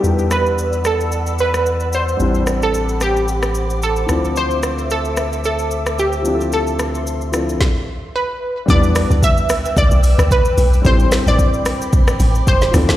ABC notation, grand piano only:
X:1
M:4/4
L:1/8
Q:"Swing 16ths" 1/4=111
K:Ephr
V:1 name="Grand piano"
[G,B,DE_B=B]8 | [G,CDEc]6- [G,CDEc] [E,F,CDEA]- | [E,F,CDEA]6- [E,F,CDEA] [F,CDEGA]- | [F,CDEGA]3 [F,CDEA] z4 |
[G,B,DEB]8 | [G,CDEAc]6- [G,CDEAc] [E,F,CDA] |]